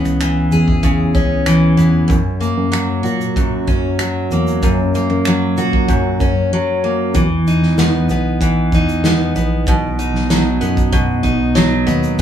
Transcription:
Already playing: steel-string acoustic guitar C#3 E3 B3 C#4 G#4
0.03 tine electric piano C#2, finger snap, shaker
0.21 steel-string acoustic guitar E3, finger snap, shaker
0.51 tine electric piano E2, steel-string acoustic guitar G#4, shaker
0.68 kick
0.83 steel-string acoustic guitar C#3, kick, shaker
1.15 tine electric piano C#2, steel-string acoustic guitar C#4, kick, shaker
1.46 steel-string acoustic guitar E3, finger snap, shaker
1.77 tine electric piano E2, steel-string acoustic guitar B3, shaker
2.08 steel-string acoustic guitar F#2, tine electric piano F#2, kick, shaker
2.41 steel-string acoustic guitar A#3, shaker
2.57 tine electric piano F#2
2.72 steel-string acoustic guitar F#3, finger snap, shaker
3.03 tine electric piano A#2, steel-string acoustic guitar F#4, shaker
3.21 shaker
3.36 steel-string acoustic guitar F#2, kick, shaker
3.67 tine electric piano F#2, steel-string acoustic guitar C#4, kick, shaker
3.99 steel-string acoustic guitar F#3, finger snap, shaker
4.31 tine electric piano E2, steel-string acoustic guitar A#3, shaker
4.47 shaker
4.62 tine electric piano F#2, steel-string acoustic guitar F#2, kick, shaker
4.95 steel-string acoustic guitar A#3, shaker
5.10 tine electric piano F#2, finger snap
5.25 steel-string acoustic guitar F#3, finger snap, shaker
5.57 tine electric piano A#2, steel-string acoustic guitar F#4, shaker
5.73 kick
5.88 steel-string acoustic guitar F#2, kick, shaker
6.20 tine electric piano F#2, steel-string acoustic guitar C#4, kick, shaker
6.53 steel-string acoustic guitar F#3
6.84 steel-string acoustic guitar A#3
7.14 tine electric piano E2, steel-string acoustic guitar E3, kick, shaker
7.47 steel-string acoustic guitar D#4, shaker
7.62 tine electric piano E2, snare
7.78 steel-string acoustic guitar B3, snare, shaker
8.09 tine electric piano B1, steel-string acoustic guitar B3, shaker
8.41 steel-string acoustic guitar E3, kick, shaker
8.72 tine electric piano E2, steel-string acoustic guitar D#4, kick, shaker
8.89 shaker
9.04 steel-string acoustic guitar B3, snare, shaker
9.35 tine electric piano A#1, steel-string acoustic guitar B3, shaker
9.67 tine electric piano B1, steel-string acoustic guitar B2, kick, shaker
9.99 steel-string acoustic guitar D#4, shaker
10.13 tine electric piano B1, snare
10.30 steel-string acoustic guitar F#3, snare, shaker
10.61 tine electric piano F#2, steel-string acoustic guitar B3, shaker
10.77 kick, shaker
10.93 steel-string acoustic guitar B2, kick, shaker
11.23 tine electric piano B1, steel-string acoustic guitar D#4, kick, shaker
11.55 steel-string acoustic guitar F#3, snare, shaker
11.87 tine electric piano D#2, steel-string acoustic guitar B3, shaker
12.04 shaker

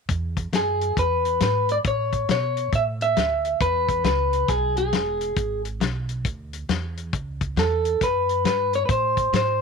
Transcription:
0.09 upright bass E2, kick, closed hi-hat
0.37 kick, closed hi-hat
0.53 upright bass F#2, clean electric guitar G#4, snare, closed hi-hat
0.81 closed hi-hat
0.97 upright bass E2, clean electric guitar B4, kick, closed hi-hat
1.25 closed hi-hat
1.40 upright bass G#2, clean electric guitar B4, snare, closed hi-hat
1.69 clean electric guitar D5, closed hi-hat
1.84 upright bass A2, clean electric guitar C#5, kick, closed hi-hat
2.13 kick, closed hi-hat
2.29 upright bass B2, clean electric guitar C#5, snare, closed hi-hat
2.57 closed hi-hat
2.73 upright bass A2, clean electric guitar E5, kick, closed hi-hat
3.01 clean electric guitar E5, closed hi-hat
3.17 upright bass D2, snare, closed hi-hat
3.45 closed hi-hat
3.60 upright bass E2, clean electric guitar B4, kick, closed hi-hat
3.89 kick, closed hi-hat
4.04 upright bass C#2, clean electric guitar B4, snare, closed hi-hat
4.33 closed hi-hat
4.48 upright bass B1, clean electric guitar G#4, kick, snare, closed hi-hat
4.77 clean electric guitar G#4, closed hi-hat
4.93 upright bass E1, snare, closed hi-hat
5.21 closed hi-hat
5.37 upright bass G#1, kick, closed hi-hat
5.65 closed hi-hat
5.80 upright bass B1, snare, closed hi-hat
6.09 closed hi-hat
6.25 upright bass D2, kick, closed hi-hat
6.53 closed hi-hat
6.69 upright bass E2, snare, closed hi-hat
6.97 closed hi-hat
7.13 upright bass C#2, kick, closed hi-hat
7.41 kick, closed hi-hat
7.56 upright bass E2, clean electric guitar A4, snare, closed hi-hat
7.85 closed hi-hat
8.01 upright bass F#2, clean electric guitar B4, kick, snare, closed hi-hat
8.29 closed hi-hat
8.44 upright bass G2, clean electric guitar B4, snare, closed hi-hat
8.73 clean electric guitar C#5, closed hi-hat
8.86 upright bass A2, clean electric guitar B4, kick, closed hi-hat
8.91 clean electric guitar C5
9.17 kick, closed hi-hat
9.33 upright bass G#2, clean electric guitar C5, snare, closed hi-hat

